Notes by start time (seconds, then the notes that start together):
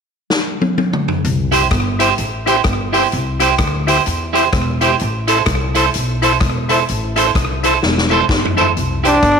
0.30 snare
0.61 high tom
0.78 high tom
0.93 mid tom
1.08 floor tom
1.24 C2, closed hi-hat
1.52 E4 G4 C5, closed hi-hat, tambourine
1.71 G1, kick, cross-stick, closed hi-hat
1.99 E4 G4 C5, closed hi-hat, tambourine
2.18 A1, closed hi-hat
2.46 E4 G4 C5, closed hi-hat, tambourine
2.64 G1, kick, cross-stick, closed hi-hat
2.92 E4 G4 C5, open hi-hat, tambourine
3.12 C2, closed hi-hat
3.40 E4 G4 C5, closed hi-hat, tambourine
3.58 D2, kick, cross-stick, closed hi-hat
3.87 E4 G4 C5, closed hi-hat, tambourine
4.06 E2, closed hi-hat
4.33 E4 G4 C5, closed hi-hat, tambourine
4.53 E1, kick, cross-stick, closed hi-hat
4.81 E4 G4 C5, closed hi-hat, tambourine
4.99 A1, closed hi-hat
5.28 E4 A4 C5, closed hi-hat, tambourine
5.46 C2, kick, cross-stick, closed hi-hat
5.75 E4 A4 C5, closed hi-hat, tambourine
5.94 B1, closed hi-hat
6.22 E4 A4 C5, closed hi-hat, tambourine
6.40 E1, kick, cross-stick, closed hi-hat
6.69 E4 A4 C5, closed hi-hat, tambourine
6.88 A1, closed hi-hat
7.16 E4 A4 C5, closed hi-hat, tambourine
7.35 C2, kick, cross-stick, closed hi-hat
7.63 E4 A4 C5, closed hi-hat, tambourine
7.83 E1, snare
7.98 snare
8.10 E4 A4 C5, tambourine
8.29 G1, kick, snare
8.45 floor tom
8.57 E4 A4 C5, tambourine
8.61 floor tom
8.77 C2, closed hi-hat
9.04 D4 E4 G4 C5, closed hi-hat
9.22 G1, kick, cross-stick, closed hi-hat